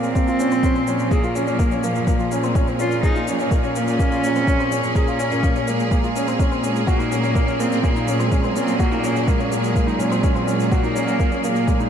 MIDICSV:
0, 0, Header, 1, 6, 480
1, 0, Start_track
1, 0, Key_signature, -5, "minor"
1, 0, Tempo, 480000
1, 1116, Time_signature, 4, 2, 24, 8
1, 11894, End_track
2, 0, Start_track
2, 0, Title_t, "Felt piano"
2, 0, Program_c, 0, 0
2, 155, Note_on_c, 0, 58, 77
2, 244, Note_off_c, 0, 58, 0
2, 275, Note_on_c, 0, 65, 72
2, 364, Note_off_c, 0, 65, 0
2, 396, Note_on_c, 0, 61, 71
2, 485, Note_off_c, 0, 61, 0
2, 519, Note_on_c, 0, 60, 72
2, 607, Note_off_c, 0, 60, 0
2, 640, Note_on_c, 0, 61, 84
2, 727, Note_off_c, 0, 61, 0
2, 759, Note_on_c, 0, 60, 75
2, 846, Note_off_c, 0, 60, 0
2, 881, Note_on_c, 0, 61, 74
2, 1056, Note_off_c, 0, 61, 0
2, 1115, Note_on_c, 0, 68, 91
2, 1204, Note_off_c, 0, 68, 0
2, 1234, Note_on_c, 0, 65, 71
2, 1323, Note_off_c, 0, 65, 0
2, 1356, Note_on_c, 0, 61, 69
2, 1444, Note_off_c, 0, 61, 0
2, 1475, Note_on_c, 0, 61, 68
2, 1564, Note_off_c, 0, 61, 0
2, 1596, Note_on_c, 0, 58, 76
2, 1685, Note_off_c, 0, 58, 0
2, 1714, Note_on_c, 0, 61, 73
2, 1804, Note_off_c, 0, 61, 0
2, 1836, Note_on_c, 0, 58, 73
2, 2014, Note_off_c, 0, 58, 0
2, 2074, Note_on_c, 0, 58, 82
2, 2164, Note_off_c, 0, 58, 0
2, 2195, Note_on_c, 0, 65, 70
2, 2284, Note_off_c, 0, 65, 0
2, 2319, Note_on_c, 0, 61, 72
2, 2407, Note_off_c, 0, 61, 0
2, 2435, Note_on_c, 0, 60, 73
2, 2524, Note_off_c, 0, 60, 0
2, 2558, Note_on_c, 0, 61, 82
2, 2646, Note_off_c, 0, 61, 0
2, 2679, Note_on_c, 0, 60, 67
2, 2767, Note_off_c, 0, 60, 0
2, 2800, Note_on_c, 0, 61, 74
2, 2976, Note_off_c, 0, 61, 0
2, 3037, Note_on_c, 0, 68, 86
2, 3125, Note_off_c, 0, 68, 0
2, 3158, Note_on_c, 0, 65, 69
2, 3246, Note_off_c, 0, 65, 0
2, 3278, Note_on_c, 0, 61, 68
2, 3366, Note_off_c, 0, 61, 0
2, 3399, Note_on_c, 0, 61, 73
2, 3487, Note_off_c, 0, 61, 0
2, 3517, Note_on_c, 0, 58, 74
2, 3605, Note_off_c, 0, 58, 0
2, 3638, Note_on_c, 0, 61, 74
2, 3726, Note_off_c, 0, 61, 0
2, 3763, Note_on_c, 0, 58, 77
2, 3938, Note_off_c, 0, 58, 0
2, 3998, Note_on_c, 0, 58, 86
2, 4086, Note_off_c, 0, 58, 0
2, 4116, Note_on_c, 0, 65, 72
2, 4205, Note_off_c, 0, 65, 0
2, 4239, Note_on_c, 0, 61, 73
2, 4327, Note_off_c, 0, 61, 0
2, 4360, Note_on_c, 0, 60, 70
2, 4448, Note_off_c, 0, 60, 0
2, 4479, Note_on_c, 0, 61, 80
2, 4566, Note_off_c, 0, 61, 0
2, 4598, Note_on_c, 0, 60, 75
2, 4686, Note_off_c, 0, 60, 0
2, 4717, Note_on_c, 0, 61, 72
2, 4894, Note_off_c, 0, 61, 0
2, 4960, Note_on_c, 0, 68, 92
2, 5047, Note_off_c, 0, 68, 0
2, 5080, Note_on_c, 0, 65, 67
2, 5167, Note_off_c, 0, 65, 0
2, 5198, Note_on_c, 0, 61, 73
2, 5286, Note_off_c, 0, 61, 0
2, 5317, Note_on_c, 0, 61, 67
2, 5406, Note_off_c, 0, 61, 0
2, 5436, Note_on_c, 0, 58, 78
2, 5525, Note_off_c, 0, 58, 0
2, 5557, Note_on_c, 0, 61, 73
2, 5646, Note_off_c, 0, 61, 0
2, 5677, Note_on_c, 0, 58, 72
2, 5854, Note_off_c, 0, 58, 0
2, 5916, Note_on_c, 0, 58, 79
2, 6005, Note_off_c, 0, 58, 0
2, 6036, Note_on_c, 0, 65, 69
2, 6125, Note_off_c, 0, 65, 0
2, 6160, Note_on_c, 0, 61, 72
2, 6247, Note_off_c, 0, 61, 0
2, 6280, Note_on_c, 0, 60, 72
2, 6367, Note_off_c, 0, 60, 0
2, 6400, Note_on_c, 0, 61, 81
2, 6487, Note_off_c, 0, 61, 0
2, 6516, Note_on_c, 0, 60, 67
2, 6605, Note_off_c, 0, 60, 0
2, 6634, Note_on_c, 0, 61, 69
2, 6812, Note_off_c, 0, 61, 0
2, 6872, Note_on_c, 0, 66, 89
2, 6962, Note_off_c, 0, 66, 0
2, 6996, Note_on_c, 0, 63, 68
2, 7084, Note_off_c, 0, 63, 0
2, 7113, Note_on_c, 0, 61, 71
2, 7203, Note_off_c, 0, 61, 0
2, 7236, Note_on_c, 0, 61, 73
2, 7324, Note_off_c, 0, 61, 0
2, 7355, Note_on_c, 0, 58, 75
2, 7444, Note_off_c, 0, 58, 0
2, 7477, Note_on_c, 0, 61, 73
2, 7566, Note_off_c, 0, 61, 0
2, 7597, Note_on_c, 0, 58, 81
2, 7774, Note_off_c, 0, 58, 0
2, 7838, Note_on_c, 0, 58, 82
2, 7926, Note_off_c, 0, 58, 0
2, 7959, Note_on_c, 0, 63, 71
2, 8046, Note_off_c, 0, 63, 0
2, 8079, Note_on_c, 0, 61, 76
2, 8167, Note_off_c, 0, 61, 0
2, 8196, Note_on_c, 0, 60, 74
2, 8285, Note_off_c, 0, 60, 0
2, 8317, Note_on_c, 0, 61, 85
2, 8406, Note_off_c, 0, 61, 0
2, 8438, Note_on_c, 0, 60, 71
2, 8526, Note_off_c, 0, 60, 0
2, 8560, Note_on_c, 0, 61, 72
2, 8736, Note_off_c, 0, 61, 0
2, 8797, Note_on_c, 0, 66, 86
2, 8886, Note_off_c, 0, 66, 0
2, 8914, Note_on_c, 0, 63, 67
2, 9003, Note_off_c, 0, 63, 0
2, 9035, Note_on_c, 0, 61, 69
2, 9124, Note_off_c, 0, 61, 0
2, 9153, Note_on_c, 0, 61, 71
2, 9243, Note_off_c, 0, 61, 0
2, 9274, Note_on_c, 0, 58, 78
2, 9364, Note_off_c, 0, 58, 0
2, 9395, Note_on_c, 0, 61, 74
2, 9484, Note_off_c, 0, 61, 0
2, 9511, Note_on_c, 0, 58, 75
2, 9691, Note_off_c, 0, 58, 0
2, 9754, Note_on_c, 0, 58, 78
2, 9843, Note_off_c, 0, 58, 0
2, 9869, Note_on_c, 0, 63, 74
2, 9960, Note_off_c, 0, 63, 0
2, 9989, Note_on_c, 0, 61, 76
2, 10080, Note_off_c, 0, 61, 0
2, 10114, Note_on_c, 0, 60, 72
2, 10203, Note_off_c, 0, 60, 0
2, 10233, Note_on_c, 0, 61, 82
2, 10323, Note_off_c, 0, 61, 0
2, 10352, Note_on_c, 0, 60, 75
2, 10442, Note_off_c, 0, 60, 0
2, 10471, Note_on_c, 0, 61, 76
2, 10650, Note_off_c, 0, 61, 0
2, 10715, Note_on_c, 0, 66, 85
2, 10804, Note_off_c, 0, 66, 0
2, 10832, Note_on_c, 0, 63, 70
2, 10922, Note_off_c, 0, 63, 0
2, 10954, Note_on_c, 0, 61, 78
2, 11043, Note_off_c, 0, 61, 0
2, 11076, Note_on_c, 0, 61, 75
2, 11165, Note_off_c, 0, 61, 0
2, 11196, Note_on_c, 0, 58, 81
2, 11285, Note_off_c, 0, 58, 0
2, 11320, Note_on_c, 0, 61, 74
2, 11407, Note_off_c, 0, 61, 0
2, 11442, Note_on_c, 0, 58, 76
2, 11617, Note_off_c, 0, 58, 0
2, 11678, Note_on_c, 0, 58, 77
2, 11766, Note_off_c, 0, 58, 0
2, 11800, Note_on_c, 0, 63, 70
2, 11888, Note_off_c, 0, 63, 0
2, 11894, End_track
3, 0, Start_track
3, 0, Title_t, "Cello"
3, 0, Program_c, 1, 42
3, 0, Note_on_c, 1, 60, 118
3, 1116, Note_on_c, 1, 58, 96
3, 1131, Note_off_c, 1, 60, 0
3, 1834, Note_on_c, 1, 53, 78
3, 1849, Note_off_c, 1, 58, 0
3, 2555, Note_off_c, 1, 53, 0
3, 2794, Note_on_c, 1, 65, 100
3, 3018, Note_off_c, 1, 65, 0
3, 3035, Note_on_c, 1, 63, 94
3, 3482, Note_off_c, 1, 63, 0
3, 3749, Note_on_c, 1, 61, 115
3, 4913, Note_off_c, 1, 61, 0
3, 4956, Note_on_c, 1, 61, 99
3, 5677, Note_on_c, 1, 56, 78
3, 5692, Note_off_c, 1, 61, 0
3, 6397, Note_off_c, 1, 56, 0
3, 6642, Note_on_c, 1, 56, 88
3, 6876, Note_on_c, 1, 58, 100
3, 6891, Note_off_c, 1, 56, 0
3, 7598, Note_on_c, 1, 60, 99
3, 7613, Note_off_c, 1, 58, 0
3, 7842, Note_on_c, 1, 58, 95
3, 7857, Note_off_c, 1, 60, 0
3, 8204, Note_on_c, 1, 56, 95
3, 8220, Note_off_c, 1, 58, 0
3, 8564, Note_on_c, 1, 60, 95
3, 8579, Note_off_c, 1, 56, 0
3, 8800, Note_off_c, 1, 60, 0
3, 8805, Note_on_c, 1, 58, 104
3, 9280, Note_on_c, 1, 56, 91
3, 9295, Note_off_c, 1, 58, 0
3, 10478, Note_off_c, 1, 56, 0
3, 10486, Note_on_c, 1, 56, 89
3, 10725, Note_on_c, 1, 58, 99
3, 10740, Note_off_c, 1, 56, 0
3, 11440, Note_off_c, 1, 58, 0
3, 11519, Note_on_c, 1, 58, 87
3, 11678, Note_on_c, 1, 56, 91
3, 11693, Note_off_c, 1, 58, 0
3, 11894, Note_off_c, 1, 56, 0
3, 11894, End_track
4, 0, Start_track
4, 0, Title_t, "String section"
4, 0, Program_c, 2, 48
4, 0, Note_on_c, 2, 46, 86
4, 0, Note_on_c, 2, 53, 74
4, 0, Note_on_c, 2, 68, 77
4, 0, Note_on_c, 2, 70, 64
4, 6876, Note_off_c, 2, 53, 0
4, 6999, Note_on_c, 2, 54, 78
4, 11894, Note_off_c, 2, 46, 0
4, 11894, Note_off_c, 2, 54, 0
4, 11894, Note_off_c, 2, 68, 0
4, 11894, Note_off_c, 2, 70, 0
4, 11894, End_track
5, 0, Start_track
5, 0, Title_t, "Cello section"
5, 0, Program_c, 3, 48
5, 0, Note_on_c, 3, 46, 83
5, 6850, Note_off_c, 3, 46, 0
5, 6876, Note_on_c, 3, 46, 86
5, 11894, Note_off_c, 3, 46, 0
5, 11894, End_track
6, 0, Start_track
6, 0, Title_t, "Drums"
6, 34, Note_on_c, 9, 82, 29
6, 134, Note_off_c, 9, 82, 0
6, 153, Note_on_c, 9, 36, 87
6, 155, Note_on_c, 9, 82, 39
6, 253, Note_off_c, 9, 36, 0
6, 255, Note_off_c, 9, 82, 0
6, 276, Note_on_c, 9, 82, 18
6, 376, Note_off_c, 9, 82, 0
6, 394, Note_on_c, 9, 82, 64
6, 494, Note_off_c, 9, 82, 0
6, 515, Note_on_c, 9, 82, 27
6, 615, Note_off_c, 9, 82, 0
6, 632, Note_on_c, 9, 36, 100
6, 635, Note_on_c, 9, 82, 40
6, 732, Note_off_c, 9, 36, 0
6, 735, Note_off_c, 9, 82, 0
6, 755, Note_on_c, 9, 82, 18
6, 855, Note_off_c, 9, 82, 0
6, 872, Note_on_c, 9, 82, 61
6, 972, Note_off_c, 9, 82, 0
6, 993, Note_on_c, 9, 82, 29
6, 1093, Note_off_c, 9, 82, 0
6, 1112, Note_on_c, 9, 36, 101
6, 1115, Note_on_c, 9, 82, 40
6, 1212, Note_off_c, 9, 36, 0
6, 1215, Note_off_c, 9, 82, 0
6, 1235, Note_on_c, 9, 82, 20
6, 1335, Note_off_c, 9, 82, 0
6, 1355, Note_on_c, 9, 82, 66
6, 1455, Note_off_c, 9, 82, 0
6, 1473, Note_on_c, 9, 82, 29
6, 1573, Note_off_c, 9, 82, 0
6, 1591, Note_on_c, 9, 36, 100
6, 1594, Note_on_c, 9, 82, 39
6, 1691, Note_off_c, 9, 36, 0
6, 1694, Note_off_c, 9, 82, 0
6, 1713, Note_on_c, 9, 82, 22
6, 1813, Note_off_c, 9, 82, 0
6, 1834, Note_on_c, 9, 82, 68
6, 1934, Note_off_c, 9, 82, 0
6, 1956, Note_on_c, 9, 82, 27
6, 2056, Note_off_c, 9, 82, 0
6, 2071, Note_on_c, 9, 36, 93
6, 2074, Note_on_c, 9, 82, 41
6, 2171, Note_off_c, 9, 36, 0
6, 2174, Note_off_c, 9, 82, 0
6, 2196, Note_on_c, 9, 82, 20
6, 2296, Note_off_c, 9, 82, 0
6, 2315, Note_on_c, 9, 82, 68
6, 2415, Note_off_c, 9, 82, 0
6, 2435, Note_on_c, 9, 82, 29
6, 2535, Note_off_c, 9, 82, 0
6, 2552, Note_on_c, 9, 36, 112
6, 2556, Note_on_c, 9, 82, 44
6, 2652, Note_off_c, 9, 36, 0
6, 2656, Note_off_c, 9, 82, 0
6, 2674, Note_on_c, 9, 82, 18
6, 2774, Note_off_c, 9, 82, 0
6, 2794, Note_on_c, 9, 82, 65
6, 2894, Note_off_c, 9, 82, 0
6, 2915, Note_on_c, 9, 82, 30
6, 3015, Note_off_c, 9, 82, 0
6, 3032, Note_on_c, 9, 36, 104
6, 3036, Note_on_c, 9, 82, 43
6, 3132, Note_off_c, 9, 36, 0
6, 3136, Note_off_c, 9, 82, 0
6, 3156, Note_on_c, 9, 82, 19
6, 3256, Note_off_c, 9, 82, 0
6, 3275, Note_on_c, 9, 82, 68
6, 3375, Note_off_c, 9, 82, 0
6, 3396, Note_on_c, 9, 82, 29
6, 3496, Note_off_c, 9, 82, 0
6, 3512, Note_on_c, 9, 36, 106
6, 3516, Note_on_c, 9, 82, 41
6, 3612, Note_off_c, 9, 36, 0
6, 3616, Note_off_c, 9, 82, 0
6, 3637, Note_on_c, 9, 82, 21
6, 3737, Note_off_c, 9, 82, 0
6, 3756, Note_on_c, 9, 82, 72
6, 3856, Note_off_c, 9, 82, 0
6, 3877, Note_on_c, 9, 82, 30
6, 3977, Note_off_c, 9, 82, 0
6, 3993, Note_on_c, 9, 36, 97
6, 3997, Note_on_c, 9, 82, 40
6, 4093, Note_off_c, 9, 36, 0
6, 4097, Note_off_c, 9, 82, 0
6, 4118, Note_on_c, 9, 82, 19
6, 4218, Note_off_c, 9, 82, 0
6, 4237, Note_on_c, 9, 82, 70
6, 4337, Note_off_c, 9, 82, 0
6, 4356, Note_on_c, 9, 82, 28
6, 4456, Note_off_c, 9, 82, 0
6, 4473, Note_on_c, 9, 36, 106
6, 4478, Note_on_c, 9, 82, 44
6, 4573, Note_off_c, 9, 36, 0
6, 4578, Note_off_c, 9, 82, 0
6, 4598, Note_on_c, 9, 82, 19
6, 4698, Note_off_c, 9, 82, 0
6, 4717, Note_on_c, 9, 82, 69
6, 4817, Note_off_c, 9, 82, 0
6, 4835, Note_on_c, 9, 82, 31
6, 4935, Note_off_c, 9, 82, 0
6, 4953, Note_on_c, 9, 36, 100
6, 4954, Note_on_c, 9, 82, 40
6, 5053, Note_off_c, 9, 36, 0
6, 5054, Note_off_c, 9, 82, 0
6, 5075, Note_on_c, 9, 82, 20
6, 5175, Note_off_c, 9, 82, 0
6, 5195, Note_on_c, 9, 82, 68
6, 5295, Note_off_c, 9, 82, 0
6, 5317, Note_on_c, 9, 82, 28
6, 5417, Note_off_c, 9, 82, 0
6, 5434, Note_on_c, 9, 36, 99
6, 5436, Note_on_c, 9, 82, 41
6, 5534, Note_off_c, 9, 36, 0
6, 5536, Note_off_c, 9, 82, 0
6, 5557, Note_on_c, 9, 82, 20
6, 5657, Note_off_c, 9, 82, 0
6, 5676, Note_on_c, 9, 82, 71
6, 5776, Note_off_c, 9, 82, 0
6, 5796, Note_on_c, 9, 82, 30
6, 5896, Note_off_c, 9, 82, 0
6, 5913, Note_on_c, 9, 36, 92
6, 5916, Note_on_c, 9, 82, 38
6, 6013, Note_off_c, 9, 36, 0
6, 6016, Note_off_c, 9, 82, 0
6, 6037, Note_on_c, 9, 82, 20
6, 6137, Note_off_c, 9, 82, 0
6, 6158, Note_on_c, 9, 82, 69
6, 6257, Note_off_c, 9, 82, 0
6, 6277, Note_on_c, 9, 82, 29
6, 6377, Note_off_c, 9, 82, 0
6, 6394, Note_on_c, 9, 36, 102
6, 6398, Note_on_c, 9, 82, 41
6, 6494, Note_off_c, 9, 36, 0
6, 6498, Note_off_c, 9, 82, 0
6, 6518, Note_on_c, 9, 82, 20
6, 6618, Note_off_c, 9, 82, 0
6, 6638, Note_on_c, 9, 82, 67
6, 6738, Note_off_c, 9, 82, 0
6, 6759, Note_on_c, 9, 82, 33
6, 6859, Note_off_c, 9, 82, 0
6, 6875, Note_on_c, 9, 36, 101
6, 6879, Note_on_c, 9, 82, 40
6, 6975, Note_off_c, 9, 36, 0
6, 6979, Note_off_c, 9, 82, 0
6, 6999, Note_on_c, 9, 82, 19
6, 7099, Note_off_c, 9, 82, 0
6, 7119, Note_on_c, 9, 82, 71
6, 7219, Note_off_c, 9, 82, 0
6, 7240, Note_on_c, 9, 82, 27
6, 7339, Note_off_c, 9, 82, 0
6, 7355, Note_on_c, 9, 36, 97
6, 7359, Note_on_c, 9, 82, 37
6, 7455, Note_off_c, 9, 36, 0
6, 7459, Note_off_c, 9, 82, 0
6, 7480, Note_on_c, 9, 82, 19
6, 7580, Note_off_c, 9, 82, 0
6, 7599, Note_on_c, 9, 82, 64
6, 7699, Note_off_c, 9, 82, 0
6, 7720, Note_on_c, 9, 82, 29
6, 7820, Note_off_c, 9, 82, 0
6, 7835, Note_on_c, 9, 36, 89
6, 7841, Note_on_c, 9, 82, 38
6, 7935, Note_off_c, 9, 36, 0
6, 7941, Note_off_c, 9, 82, 0
6, 7960, Note_on_c, 9, 82, 19
6, 8060, Note_off_c, 9, 82, 0
6, 8078, Note_on_c, 9, 82, 65
6, 8178, Note_off_c, 9, 82, 0
6, 8199, Note_on_c, 9, 82, 29
6, 8299, Note_off_c, 9, 82, 0
6, 8315, Note_on_c, 9, 36, 100
6, 8318, Note_on_c, 9, 82, 41
6, 8415, Note_off_c, 9, 36, 0
6, 8418, Note_off_c, 9, 82, 0
6, 8438, Note_on_c, 9, 82, 18
6, 8538, Note_off_c, 9, 82, 0
6, 8559, Note_on_c, 9, 82, 68
6, 8659, Note_off_c, 9, 82, 0
6, 8679, Note_on_c, 9, 82, 31
6, 8779, Note_off_c, 9, 82, 0
6, 8795, Note_on_c, 9, 36, 94
6, 8798, Note_on_c, 9, 82, 38
6, 8895, Note_off_c, 9, 36, 0
6, 8898, Note_off_c, 9, 82, 0
6, 8919, Note_on_c, 9, 82, 19
6, 9019, Note_off_c, 9, 82, 0
6, 9038, Note_on_c, 9, 82, 67
6, 9138, Note_off_c, 9, 82, 0
6, 9160, Note_on_c, 9, 82, 29
6, 9260, Note_off_c, 9, 82, 0
6, 9275, Note_on_c, 9, 36, 94
6, 9279, Note_on_c, 9, 82, 38
6, 9375, Note_off_c, 9, 36, 0
6, 9379, Note_off_c, 9, 82, 0
6, 9399, Note_on_c, 9, 82, 20
6, 9499, Note_off_c, 9, 82, 0
6, 9519, Note_on_c, 9, 82, 63
6, 9619, Note_off_c, 9, 82, 0
6, 9640, Note_on_c, 9, 82, 29
6, 9740, Note_off_c, 9, 82, 0
6, 9755, Note_on_c, 9, 36, 86
6, 9761, Note_on_c, 9, 82, 35
6, 9855, Note_off_c, 9, 36, 0
6, 9861, Note_off_c, 9, 82, 0
6, 9880, Note_on_c, 9, 82, 19
6, 9980, Note_off_c, 9, 82, 0
6, 9998, Note_on_c, 9, 82, 66
6, 10098, Note_off_c, 9, 82, 0
6, 10118, Note_on_c, 9, 82, 28
6, 10218, Note_off_c, 9, 82, 0
6, 10235, Note_on_c, 9, 36, 100
6, 10235, Note_on_c, 9, 82, 40
6, 10335, Note_off_c, 9, 36, 0
6, 10335, Note_off_c, 9, 82, 0
6, 10357, Note_on_c, 9, 82, 19
6, 10457, Note_off_c, 9, 82, 0
6, 10479, Note_on_c, 9, 82, 60
6, 10579, Note_off_c, 9, 82, 0
6, 10599, Note_on_c, 9, 82, 30
6, 10699, Note_off_c, 9, 82, 0
6, 10716, Note_on_c, 9, 36, 95
6, 10719, Note_on_c, 9, 82, 36
6, 10816, Note_off_c, 9, 36, 0
6, 10819, Note_off_c, 9, 82, 0
6, 10837, Note_on_c, 9, 82, 18
6, 10937, Note_off_c, 9, 82, 0
6, 10959, Note_on_c, 9, 82, 68
6, 11059, Note_off_c, 9, 82, 0
6, 11080, Note_on_c, 9, 82, 28
6, 11180, Note_off_c, 9, 82, 0
6, 11196, Note_on_c, 9, 36, 92
6, 11200, Note_on_c, 9, 82, 38
6, 11296, Note_off_c, 9, 36, 0
6, 11300, Note_off_c, 9, 82, 0
6, 11319, Note_on_c, 9, 82, 19
6, 11419, Note_off_c, 9, 82, 0
6, 11438, Note_on_c, 9, 82, 69
6, 11538, Note_off_c, 9, 82, 0
6, 11558, Note_on_c, 9, 82, 27
6, 11658, Note_off_c, 9, 82, 0
6, 11675, Note_on_c, 9, 36, 92
6, 11678, Note_on_c, 9, 82, 37
6, 11775, Note_off_c, 9, 36, 0
6, 11778, Note_off_c, 9, 82, 0
6, 11799, Note_on_c, 9, 82, 20
6, 11894, Note_off_c, 9, 82, 0
6, 11894, End_track
0, 0, End_of_file